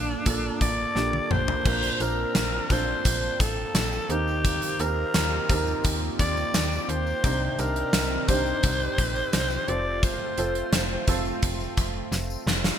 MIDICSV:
0, 0, Header, 1, 6, 480
1, 0, Start_track
1, 0, Tempo, 697674
1, 1141, Time_signature, 4, 2, 24, 8
1, 8797, End_track
2, 0, Start_track
2, 0, Title_t, "Alto saxophone"
2, 0, Program_c, 0, 65
2, 0, Note_on_c, 0, 62, 85
2, 421, Note_off_c, 0, 62, 0
2, 425, Note_on_c, 0, 74, 95
2, 904, Note_on_c, 0, 72, 101
2, 914, Note_off_c, 0, 74, 0
2, 1384, Note_on_c, 0, 70, 91
2, 1394, Note_off_c, 0, 72, 0
2, 1871, Note_on_c, 0, 72, 98
2, 1881, Note_off_c, 0, 70, 0
2, 2346, Note_on_c, 0, 69, 86
2, 2357, Note_off_c, 0, 72, 0
2, 2827, Note_on_c, 0, 67, 90
2, 2838, Note_off_c, 0, 69, 0
2, 3306, Note_on_c, 0, 70, 96
2, 3316, Note_off_c, 0, 67, 0
2, 4078, Note_off_c, 0, 70, 0
2, 4267, Note_on_c, 0, 74, 96
2, 4697, Note_off_c, 0, 74, 0
2, 4697, Note_on_c, 0, 74, 69
2, 4744, Note_on_c, 0, 72, 97
2, 4755, Note_off_c, 0, 74, 0
2, 5180, Note_off_c, 0, 72, 0
2, 5180, Note_on_c, 0, 72, 66
2, 5226, Note_on_c, 0, 70, 89
2, 5236, Note_off_c, 0, 72, 0
2, 5697, Note_on_c, 0, 72, 102
2, 5707, Note_off_c, 0, 70, 0
2, 6662, Note_on_c, 0, 74, 92
2, 6672, Note_off_c, 0, 72, 0
2, 6906, Note_on_c, 0, 72, 83
2, 6917, Note_off_c, 0, 74, 0
2, 7624, Note_off_c, 0, 72, 0
2, 8797, End_track
3, 0, Start_track
3, 0, Title_t, "Grand piano"
3, 0, Program_c, 1, 0
3, 0, Control_c, 1, 64, 127
3, 0, Note_on_c, 1, 46, 61
3, 0, Note_on_c, 1, 58, 72
3, 0, Note_on_c, 1, 62, 64
3, 0, Note_on_c, 1, 65, 64
3, 0, Note_on_c, 1, 69, 76
3, 177, Note_off_c, 1, 58, 0
3, 177, Note_on_c, 1, 58, 78
3, 180, Note_off_c, 1, 62, 0
3, 180, Note_on_c, 1, 62, 70
3, 181, Note_off_c, 1, 65, 0
3, 181, Note_on_c, 1, 65, 70
3, 183, Note_off_c, 1, 69, 0
3, 183, Note_on_c, 1, 69, 87
3, 569, Note_off_c, 1, 58, 0
3, 571, Note_off_c, 1, 62, 0
3, 571, Note_off_c, 1, 65, 0
3, 572, Note_off_c, 1, 69, 0
3, 657, Note_on_c, 1, 58, 70
3, 657, Note_on_c, 1, 62, 65
3, 661, Note_on_c, 1, 65, 67
3, 663, Note_on_c, 1, 67, 78
3, 1049, Note_off_c, 1, 58, 0
3, 1049, Note_off_c, 1, 62, 0
3, 1051, Note_off_c, 1, 65, 0
3, 1053, Note_off_c, 1, 67, 0
3, 1135, Note_on_c, 1, 60, 68
3, 1140, Note_on_c, 1, 62, 61
3, 1141, Note_off_c, 1, 46, 0
3, 1141, Note_on_c, 1, 46, 58
3, 1142, Note_on_c, 1, 65, 64
3, 1145, Note_on_c, 1, 70, 74
3, 1150, Control_c, 1, 64, 0
3, 1260, Control_c, 1, 64, 127
3, 1333, Note_off_c, 1, 60, 0
3, 1335, Note_off_c, 1, 62, 0
3, 1337, Note_off_c, 1, 65, 0
3, 1338, Note_off_c, 1, 70, 0
3, 1374, Note_on_c, 1, 60, 65
3, 1378, Note_on_c, 1, 62, 64
3, 1382, Note_on_c, 1, 65, 60
3, 1384, Note_on_c, 1, 70, 76
3, 1768, Note_off_c, 1, 60, 0
3, 1770, Note_off_c, 1, 62, 0
3, 1772, Note_off_c, 1, 65, 0
3, 1773, Note_off_c, 1, 70, 0
3, 1834, Note_off_c, 1, 46, 0
3, 1859, Note_on_c, 1, 60, 67
3, 1864, Note_on_c, 1, 62, 66
3, 1864, Note_on_c, 1, 65, 67
3, 1867, Note_on_c, 1, 69, 75
3, 2641, Note_off_c, 1, 60, 0
3, 2643, Note_off_c, 1, 62, 0
3, 2643, Note_off_c, 1, 65, 0
3, 2645, Note_off_c, 1, 69, 0
3, 2817, Note_on_c, 1, 60, 68
3, 2819, Note_on_c, 1, 63, 64
3, 2822, Note_on_c, 1, 51, 57
3, 2823, Note_on_c, 1, 67, 67
3, 2826, Note_on_c, 1, 70, 77
3, 2830, Control_c, 1, 64, 0
3, 2953, Control_c, 1, 64, 127
3, 3209, Note_off_c, 1, 60, 0
3, 3211, Note_off_c, 1, 63, 0
3, 3212, Note_off_c, 1, 67, 0
3, 3214, Note_off_c, 1, 70, 0
3, 3298, Note_on_c, 1, 60, 68
3, 3301, Note_on_c, 1, 63, 62
3, 3304, Note_on_c, 1, 67, 65
3, 3306, Note_on_c, 1, 70, 71
3, 3514, Note_off_c, 1, 51, 0
3, 3690, Note_off_c, 1, 60, 0
3, 3691, Note_off_c, 1, 63, 0
3, 3693, Note_off_c, 1, 67, 0
3, 3694, Note_off_c, 1, 70, 0
3, 3777, Note_on_c, 1, 60, 69
3, 3781, Note_on_c, 1, 63, 66
3, 3782, Note_on_c, 1, 67, 62
3, 3784, Note_on_c, 1, 70, 76
3, 4560, Note_off_c, 1, 60, 0
3, 4562, Note_off_c, 1, 63, 0
3, 4562, Note_off_c, 1, 67, 0
3, 4563, Note_off_c, 1, 70, 0
3, 4977, Note_on_c, 1, 62, 74
3, 4982, Note_on_c, 1, 48, 66
3, 4982, Note_on_c, 1, 63, 67
3, 4983, Note_on_c, 1, 67, 64
3, 4987, Note_on_c, 1, 72, 82
3, 4990, Control_c, 1, 64, 0
3, 5108, Control_c, 1, 64, 127
3, 5174, Note_off_c, 1, 62, 0
3, 5177, Note_off_c, 1, 63, 0
3, 5177, Note_off_c, 1, 67, 0
3, 5179, Note_off_c, 1, 72, 0
3, 5214, Note_on_c, 1, 62, 71
3, 5216, Note_on_c, 1, 63, 63
3, 5219, Note_on_c, 1, 67, 65
3, 5222, Note_on_c, 1, 72, 76
3, 5608, Note_off_c, 1, 62, 0
3, 5609, Note_off_c, 1, 63, 0
3, 5611, Note_off_c, 1, 67, 0
3, 5612, Note_off_c, 1, 72, 0
3, 5674, Note_off_c, 1, 48, 0
3, 5701, Note_on_c, 1, 62, 70
3, 5703, Note_on_c, 1, 63, 69
3, 5706, Note_on_c, 1, 67, 64
3, 5708, Note_on_c, 1, 72, 79
3, 6482, Note_off_c, 1, 62, 0
3, 6483, Note_off_c, 1, 63, 0
3, 6484, Note_off_c, 1, 67, 0
3, 6485, Note_off_c, 1, 72, 0
3, 6658, Note_on_c, 1, 60, 76
3, 6662, Note_on_c, 1, 65, 68
3, 6663, Note_on_c, 1, 69, 65
3, 6667, Note_on_c, 1, 72, 84
3, 6670, Control_c, 1, 64, 0
3, 6794, Control_c, 1, 64, 127
3, 7050, Note_off_c, 1, 60, 0
3, 7052, Note_off_c, 1, 65, 0
3, 7052, Note_off_c, 1, 69, 0
3, 7054, Note_off_c, 1, 72, 0
3, 7138, Note_on_c, 1, 60, 70
3, 7141, Note_on_c, 1, 65, 65
3, 7144, Note_on_c, 1, 69, 68
3, 7145, Note_on_c, 1, 72, 76
3, 7530, Note_off_c, 1, 60, 0
3, 7532, Note_off_c, 1, 65, 0
3, 7533, Note_off_c, 1, 69, 0
3, 7534, Note_off_c, 1, 72, 0
3, 7619, Note_on_c, 1, 60, 84
3, 7623, Note_on_c, 1, 65, 80
3, 7625, Note_on_c, 1, 69, 82
3, 7629, Note_on_c, 1, 72, 96
3, 8400, Note_off_c, 1, 60, 0
3, 8403, Note_off_c, 1, 65, 0
3, 8404, Note_off_c, 1, 69, 0
3, 8406, Note_off_c, 1, 72, 0
3, 8797, End_track
4, 0, Start_track
4, 0, Title_t, "Analog synth pad"
4, 0, Program_c, 2, 89
4, 0, Note_on_c, 2, 58, 71
4, 0, Note_on_c, 2, 62, 84
4, 0, Note_on_c, 2, 69, 76
4, 1121, Note_off_c, 2, 58, 0
4, 1121, Note_off_c, 2, 69, 0
4, 1122, Note_off_c, 2, 62, 0
4, 1140, Note_on_c, 2, 58, 75
4, 1140, Note_on_c, 2, 62, 81
4, 1141, Note_on_c, 2, 60, 68
4, 2804, Note_off_c, 2, 62, 0
4, 2819, Note_on_c, 2, 65, 68
4, 2820, Note_on_c, 2, 51, 76
4, 2820, Note_on_c, 2, 67, 84
4, 4953, Note_off_c, 2, 58, 0
4, 4959, Note_off_c, 2, 51, 0
4, 4959, Note_off_c, 2, 65, 0
4, 4977, Note_on_c, 2, 51, 73
4, 4978, Note_on_c, 2, 74, 72
4, 4980, Note_on_c, 2, 48, 74
4, 6633, Note_off_c, 2, 67, 0
4, 6642, Note_off_c, 2, 51, 0
4, 6643, Note_off_c, 2, 74, 0
4, 6644, Note_off_c, 2, 48, 0
4, 6667, Note_on_c, 2, 65, 84
4, 6668, Note_on_c, 2, 57, 79
4, 8793, Note_off_c, 2, 60, 0
4, 8797, Note_off_c, 2, 57, 0
4, 8797, Note_off_c, 2, 65, 0
4, 8797, End_track
5, 0, Start_track
5, 0, Title_t, "FM bass"
5, 0, Program_c, 3, 39
5, 0, Note_on_c, 3, 34, 92
5, 112, Note_off_c, 3, 34, 0
5, 179, Note_on_c, 3, 34, 96
5, 353, Note_off_c, 3, 34, 0
5, 418, Note_on_c, 3, 33, 82
5, 592, Note_off_c, 3, 33, 0
5, 658, Note_on_c, 3, 34, 95
5, 832, Note_off_c, 3, 34, 0
5, 899, Note_on_c, 3, 34, 97
5, 1073, Note_off_c, 3, 34, 0
5, 1139, Note_on_c, 3, 34, 102
5, 1313, Note_off_c, 3, 34, 0
5, 1380, Note_on_c, 3, 34, 91
5, 1553, Note_off_c, 3, 34, 0
5, 1620, Note_on_c, 3, 34, 98
5, 1793, Note_off_c, 3, 34, 0
5, 1859, Note_on_c, 3, 34, 95
5, 2032, Note_off_c, 3, 34, 0
5, 2101, Note_on_c, 3, 34, 98
5, 2274, Note_off_c, 3, 34, 0
5, 2339, Note_on_c, 3, 33, 88
5, 2512, Note_off_c, 3, 33, 0
5, 2577, Note_on_c, 3, 34, 96
5, 2751, Note_off_c, 3, 34, 0
5, 2817, Note_on_c, 3, 39, 99
5, 3164, Note_off_c, 3, 39, 0
5, 3300, Note_on_c, 3, 39, 101
5, 3473, Note_off_c, 3, 39, 0
5, 3543, Note_on_c, 3, 39, 94
5, 3715, Note_off_c, 3, 39, 0
5, 3780, Note_on_c, 3, 39, 103
5, 3953, Note_off_c, 3, 39, 0
5, 4023, Note_on_c, 3, 39, 97
5, 4195, Note_off_c, 3, 39, 0
5, 4262, Note_on_c, 3, 39, 84
5, 4434, Note_off_c, 3, 39, 0
5, 4501, Note_on_c, 3, 39, 102
5, 4674, Note_off_c, 3, 39, 0
5, 4739, Note_on_c, 3, 39, 100
5, 4912, Note_off_c, 3, 39, 0
5, 4981, Note_on_c, 3, 36, 110
5, 5154, Note_off_c, 3, 36, 0
5, 5221, Note_on_c, 3, 36, 100
5, 5394, Note_off_c, 3, 36, 0
5, 5458, Note_on_c, 3, 36, 94
5, 5632, Note_off_c, 3, 36, 0
5, 5699, Note_on_c, 3, 36, 98
5, 5873, Note_off_c, 3, 36, 0
5, 5943, Note_on_c, 3, 36, 109
5, 6115, Note_off_c, 3, 36, 0
5, 6181, Note_on_c, 3, 34, 97
5, 6354, Note_off_c, 3, 34, 0
5, 6423, Note_on_c, 3, 36, 100
5, 6595, Note_off_c, 3, 36, 0
5, 6663, Note_on_c, 3, 29, 106
5, 7008, Note_off_c, 3, 29, 0
5, 7142, Note_on_c, 3, 29, 92
5, 7314, Note_off_c, 3, 29, 0
5, 7378, Note_on_c, 3, 29, 110
5, 7552, Note_off_c, 3, 29, 0
5, 7621, Note_on_c, 3, 29, 103
5, 7794, Note_off_c, 3, 29, 0
5, 7864, Note_on_c, 3, 29, 100
5, 8035, Note_off_c, 3, 29, 0
5, 8101, Note_on_c, 3, 29, 88
5, 8274, Note_off_c, 3, 29, 0
5, 8336, Note_on_c, 3, 29, 102
5, 8511, Note_off_c, 3, 29, 0
5, 8577, Note_on_c, 3, 29, 105
5, 8751, Note_off_c, 3, 29, 0
5, 8797, End_track
6, 0, Start_track
6, 0, Title_t, "Drums"
6, 178, Note_on_c, 9, 42, 88
6, 181, Note_on_c, 9, 36, 89
6, 246, Note_off_c, 9, 42, 0
6, 249, Note_off_c, 9, 36, 0
6, 419, Note_on_c, 9, 42, 67
6, 420, Note_on_c, 9, 36, 75
6, 488, Note_off_c, 9, 42, 0
6, 489, Note_off_c, 9, 36, 0
6, 660, Note_on_c, 9, 38, 49
6, 728, Note_off_c, 9, 38, 0
6, 780, Note_on_c, 9, 48, 53
6, 849, Note_off_c, 9, 48, 0
6, 899, Note_on_c, 9, 45, 81
6, 968, Note_off_c, 9, 45, 0
6, 1019, Note_on_c, 9, 43, 84
6, 1088, Note_off_c, 9, 43, 0
6, 1139, Note_on_c, 9, 36, 93
6, 1139, Note_on_c, 9, 49, 84
6, 1141, Note_on_c, 9, 54, 46
6, 1207, Note_off_c, 9, 49, 0
6, 1208, Note_off_c, 9, 36, 0
6, 1210, Note_off_c, 9, 54, 0
6, 1257, Note_on_c, 9, 42, 49
6, 1326, Note_off_c, 9, 42, 0
6, 1376, Note_on_c, 9, 54, 49
6, 1379, Note_on_c, 9, 42, 76
6, 1445, Note_off_c, 9, 54, 0
6, 1448, Note_off_c, 9, 42, 0
6, 1616, Note_on_c, 9, 38, 104
6, 1619, Note_on_c, 9, 42, 91
6, 1619, Note_on_c, 9, 54, 74
6, 1685, Note_off_c, 9, 38, 0
6, 1688, Note_off_c, 9, 42, 0
6, 1688, Note_off_c, 9, 54, 0
6, 1857, Note_on_c, 9, 42, 74
6, 1857, Note_on_c, 9, 54, 43
6, 1859, Note_on_c, 9, 36, 75
6, 1926, Note_off_c, 9, 42, 0
6, 1926, Note_off_c, 9, 54, 0
6, 1928, Note_off_c, 9, 36, 0
6, 2096, Note_on_c, 9, 54, 41
6, 2098, Note_on_c, 9, 42, 90
6, 2100, Note_on_c, 9, 36, 90
6, 2165, Note_off_c, 9, 54, 0
6, 2167, Note_off_c, 9, 42, 0
6, 2169, Note_off_c, 9, 36, 0
6, 2215, Note_on_c, 9, 54, 30
6, 2284, Note_off_c, 9, 54, 0
6, 2337, Note_on_c, 9, 54, 43
6, 2339, Note_on_c, 9, 36, 83
6, 2339, Note_on_c, 9, 42, 66
6, 2406, Note_off_c, 9, 54, 0
6, 2408, Note_off_c, 9, 36, 0
6, 2408, Note_off_c, 9, 42, 0
6, 2578, Note_on_c, 9, 42, 88
6, 2578, Note_on_c, 9, 54, 82
6, 2579, Note_on_c, 9, 38, 102
6, 2647, Note_off_c, 9, 42, 0
6, 2647, Note_off_c, 9, 54, 0
6, 2648, Note_off_c, 9, 38, 0
6, 2701, Note_on_c, 9, 54, 44
6, 2769, Note_off_c, 9, 54, 0
6, 2819, Note_on_c, 9, 42, 70
6, 2888, Note_off_c, 9, 42, 0
6, 2941, Note_on_c, 9, 54, 27
6, 3010, Note_off_c, 9, 54, 0
6, 3059, Note_on_c, 9, 36, 90
6, 3059, Note_on_c, 9, 42, 74
6, 3060, Note_on_c, 9, 54, 43
6, 3128, Note_off_c, 9, 36, 0
6, 3128, Note_off_c, 9, 42, 0
6, 3129, Note_off_c, 9, 54, 0
6, 3178, Note_on_c, 9, 42, 52
6, 3247, Note_off_c, 9, 42, 0
6, 3299, Note_on_c, 9, 42, 73
6, 3300, Note_on_c, 9, 54, 47
6, 3367, Note_off_c, 9, 42, 0
6, 3369, Note_off_c, 9, 54, 0
6, 3537, Note_on_c, 9, 54, 73
6, 3539, Note_on_c, 9, 38, 99
6, 3542, Note_on_c, 9, 42, 84
6, 3606, Note_off_c, 9, 54, 0
6, 3607, Note_off_c, 9, 38, 0
6, 3610, Note_off_c, 9, 42, 0
6, 3780, Note_on_c, 9, 42, 79
6, 3780, Note_on_c, 9, 54, 43
6, 3781, Note_on_c, 9, 36, 82
6, 3848, Note_off_c, 9, 42, 0
6, 3849, Note_off_c, 9, 54, 0
6, 3850, Note_off_c, 9, 36, 0
6, 3899, Note_on_c, 9, 54, 34
6, 3968, Note_off_c, 9, 54, 0
6, 4016, Note_on_c, 9, 54, 42
6, 4022, Note_on_c, 9, 36, 90
6, 4022, Note_on_c, 9, 42, 91
6, 4085, Note_off_c, 9, 54, 0
6, 4090, Note_off_c, 9, 42, 0
6, 4091, Note_off_c, 9, 36, 0
6, 4261, Note_on_c, 9, 36, 79
6, 4261, Note_on_c, 9, 54, 45
6, 4262, Note_on_c, 9, 42, 70
6, 4330, Note_off_c, 9, 36, 0
6, 4330, Note_off_c, 9, 54, 0
6, 4331, Note_off_c, 9, 42, 0
6, 4382, Note_on_c, 9, 54, 36
6, 4451, Note_off_c, 9, 54, 0
6, 4500, Note_on_c, 9, 54, 80
6, 4502, Note_on_c, 9, 38, 100
6, 4502, Note_on_c, 9, 42, 87
6, 4569, Note_off_c, 9, 54, 0
6, 4571, Note_off_c, 9, 38, 0
6, 4571, Note_off_c, 9, 42, 0
6, 4623, Note_on_c, 9, 54, 44
6, 4692, Note_off_c, 9, 54, 0
6, 4743, Note_on_c, 9, 42, 72
6, 4812, Note_off_c, 9, 42, 0
6, 4862, Note_on_c, 9, 54, 25
6, 4931, Note_off_c, 9, 54, 0
6, 4981, Note_on_c, 9, 36, 96
6, 4981, Note_on_c, 9, 42, 78
6, 4981, Note_on_c, 9, 54, 48
6, 5049, Note_off_c, 9, 42, 0
6, 5050, Note_off_c, 9, 36, 0
6, 5050, Note_off_c, 9, 54, 0
6, 5220, Note_on_c, 9, 42, 79
6, 5222, Note_on_c, 9, 54, 50
6, 5288, Note_off_c, 9, 42, 0
6, 5291, Note_off_c, 9, 54, 0
6, 5339, Note_on_c, 9, 42, 49
6, 5408, Note_off_c, 9, 42, 0
6, 5456, Note_on_c, 9, 38, 108
6, 5459, Note_on_c, 9, 42, 88
6, 5462, Note_on_c, 9, 54, 75
6, 5525, Note_off_c, 9, 38, 0
6, 5528, Note_off_c, 9, 42, 0
6, 5531, Note_off_c, 9, 54, 0
6, 5699, Note_on_c, 9, 42, 76
6, 5701, Note_on_c, 9, 36, 78
6, 5701, Note_on_c, 9, 54, 46
6, 5767, Note_off_c, 9, 42, 0
6, 5769, Note_off_c, 9, 36, 0
6, 5770, Note_off_c, 9, 54, 0
6, 5819, Note_on_c, 9, 54, 33
6, 5888, Note_off_c, 9, 54, 0
6, 5938, Note_on_c, 9, 42, 89
6, 5938, Note_on_c, 9, 54, 41
6, 5942, Note_on_c, 9, 36, 93
6, 6006, Note_off_c, 9, 54, 0
6, 6007, Note_off_c, 9, 42, 0
6, 6011, Note_off_c, 9, 36, 0
6, 6059, Note_on_c, 9, 54, 29
6, 6128, Note_off_c, 9, 54, 0
6, 6179, Note_on_c, 9, 54, 47
6, 6180, Note_on_c, 9, 42, 67
6, 6181, Note_on_c, 9, 36, 83
6, 6248, Note_off_c, 9, 54, 0
6, 6249, Note_off_c, 9, 42, 0
6, 6250, Note_off_c, 9, 36, 0
6, 6300, Note_on_c, 9, 54, 34
6, 6369, Note_off_c, 9, 54, 0
6, 6418, Note_on_c, 9, 54, 82
6, 6420, Note_on_c, 9, 42, 84
6, 6421, Note_on_c, 9, 38, 106
6, 6487, Note_off_c, 9, 54, 0
6, 6489, Note_off_c, 9, 42, 0
6, 6490, Note_off_c, 9, 38, 0
6, 6538, Note_on_c, 9, 54, 46
6, 6606, Note_off_c, 9, 54, 0
6, 6661, Note_on_c, 9, 42, 75
6, 6730, Note_off_c, 9, 42, 0
6, 6900, Note_on_c, 9, 36, 99
6, 6900, Note_on_c, 9, 42, 77
6, 6901, Note_on_c, 9, 54, 49
6, 6968, Note_off_c, 9, 42, 0
6, 6969, Note_off_c, 9, 36, 0
6, 6970, Note_off_c, 9, 54, 0
6, 7138, Note_on_c, 9, 42, 76
6, 7139, Note_on_c, 9, 54, 47
6, 7207, Note_off_c, 9, 42, 0
6, 7208, Note_off_c, 9, 54, 0
6, 7260, Note_on_c, 9, 42, 51
6, 7329, Note_off_c, 9, 42, 0
6, 7379, Note_on_c, 9, 38, 107
6, 7379, Note_on_c, 9, 54, 75
6, 7382, Note_on_c, 9, 42, 93
6, 7448, Note_off_c, 9, 38, 0
6, 7448, Note_off_c, 9, 54, 0
6, 7451, Note_off_c, 9, 42, 0
6, 7619, Note_on_c, 9, 42, 81
6, 7621, Note_on_c, 9, 36, 80
6, 7621, Note_on_c, 9, 54, 46
6, 7688, Note_off_c, 9, 42, 0
6, 7690, Note_off_c, 9, 36, 0
6, 7690, Note_off_c, 9, 54, 0
6, 7742, Note_on_c, 9, 54, 32
6, 7810, Note_off_c, 9, 54, 0
6, 7860, Note_on_c, 9, 42, 89
6, 7860, Note_on_c, 9, 54, 41
6, 7862, Note_on_c, 9, 36, 91
6, 7929, Note_off_c, 9, 42, 0
6, 7929, Note_off_c, 9, 54, 0
6, 7931, Note_off_c, 9, 36, 0
6, 7981, Note_on_c, 9, 54, 31
6, 8050, Note_off_c, 9, 54, 0
6, 8099, Note_on_c, 9, 42, 71
6, 8101, Note_on_c, 9, 36, 83
6, 8102, Note_on_c, 9, 54, 44
6, 8168, Note_off_c, 9, 42, 0
6, 8170, Note_off_c, 9, 36, 0
6, 8171, Note_off_c, 9, 54, 0
6, 8340, Note_on_c, 9, 38, 56
6, 8341, Note_on_c, 9, 54, 78
6, 8409, Note_off_c, 9, 38, 0
6, 8410, Note_off_c, 9, 54, 0
6, 8463, Note_on_c, 9, 54, 48
6, 8531, Note_off_c, 9, 54, 0
6, 8581, Note_on_c, 9, 38, 86
6, 8650, Note_off_c, 9, 38, 0
6, 8699, Note_on_c, 9, 38, 89
6, 8701, Note_on_c, 9, 54, 27
6, 8768, Note_off_c, 9, 38, 0
6, 8769, Note_off_c, 9, 54, 0
6, 8797, End_track
0, 0, End_of_file